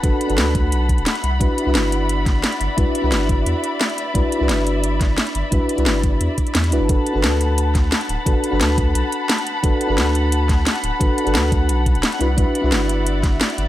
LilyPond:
<<
  \new Staff \with { instrumentName = "String section" } { \time 4/4 \key g \major \tempo 4 = 175 << { b''1~ | b''1~ | b''1~ | b''1~ |
b''1 | b''1~ | b''1~ | b''1~ |
b''1~ | b''1 | } \\ { <fis'' a''>2.~ <fis'' a''>8 <d'' e''>8~ | <d'' e''>1~ | <d'' e''>1~ | <d'' e''>1~ |
<d'' e''>1 | <fis'' a''>1~ | <fis'' a''>1~ | <fis'' a''>1~ |
<fis'' a''>2.~ <fis'' a''>8 <d'' e''>8~ | <d'' e''>1 | } >> }
  \new Staff \with { instrumentName = "FM electric piano" } { \time 4/4 \key g \major <d' fis' a' b'>8. <d' fis' a' b'>2~ <d' fis' a' b'>8. r8 | <d' e' fis' b'>8. <d' e' fis' b'>2.~ <d' e' fis' b'>16 | <d' e' fis' b'>8. <d' e' fis' b'>2.~ <d' e' fis' b'>16 | <d' e' fis' b'>8. <d' e' fis' b'>2.~ <d' e' fis' b'>16 |
<d' e' fis' b'>8. <d' e' fis' b'>2~ <d' e' fis' b'>8. <d' e' fis' b'>16 r16 | <d' fis' a' b'>8. <d' fis' a' b'>2.~ <d' fis' a' b'>16 | <d' fis' a' b'>8. <d' fis' a' b'>2.~ <d' fis' a' b'>16 | <d' fis' a' b'>8. <d' fis' a' b'>2.~ <d' fis' a' b'>16 |
<d' fis' a' b'>8. <d' fis' a' b'>2~ <d' fis' a' b'>8. <d' e' fis' b'>16 r16 | <d' e' fis' b'>8. <d' e' fis' b'>2.~ <d' e' fis' b'>16 | }
  \new Staff \with { instrumentName = "Sub bass" } { \clef bass \time 4/4 \key g \major g,,16 r8 g,,16 d,4 b,,8. d,,16 r8 c,8 | c,16 r8 c,16 g,,2 r8 g,,16 r16 | c,16 r8 c,16 g,,4 e,16 r4. r16 | c,16 r8 c,16 g,,2 r8 g,,16 r16 |
c,16 r8 c,16 g,,4 e,16 r8. e,8 c,16 g,,16 | g,,16 r8 g,,16 d,2 r8 d,,16 r16 | g,,16 r8 g,,16 d,4 b,,16 r4. r16 | g,,16 r8 g,,16 d,2 r8 d,,16 r16 |
g,,16 r8 g,,16 d,4 b,,8. d,,16 r8 c,8 | c,16 r8 c,16 g,,2 r8 g,,16 r16 | }
  \new DrumStaff \with { instrumentName = "Drums" } \drummode { \time 4/4 <hh bd>8 hh16 hh16 <hh sn>8 <hh bd>8 hh8 <hh bd>16 hh16 <hh sn>16 hh16 hh8 | <hh bd>8 hh8 <hh sn>8 hh8 hh8 <hh bd sn>8 <hh sn>16 hh16 hh8 | <hh bd>8 hh8 <hh sn>8 <hh bd>8 hh8 hh8 <hh sn>16 hh16 hh8 | <hh bd>8 hh8 <hh sn>8 hh8 hh8 <hh bd sn>8 <hh sn>16 hh16 hh8 |
<hh bd>8 hh16 hh16 <hh sn>8 <hh bd>8 hh8 <hh bd>16 hh16 <hh sn>16 hh16 hh8 | <hh bd>8 hh8 <hh sn>8 hh8 hh8 <hh bd sn>8 <hh sn>16 hh16 hh8 | <hh bd>8 hh8 <hh sn>8 <hh bd>8 hh8 hh8 <hh sn>16 hh16 hh8 | <hh bd>8 hh8 <hh sn>8 hh8 hh8 <hh bd sn>8 <hh sn>16 hh16 hh8 |
<hh bd>8 hh16 hh16 <hh sn>8 <hh bd>8 hh8 <hh bd>16 hh16 <hh sn>16 hh16 hh8 | <hh bd>8 hh8 <hh sn>8 hh8 hh8 <hh bd sn>8 <hh sn>16 hh16 hh8 | }
>>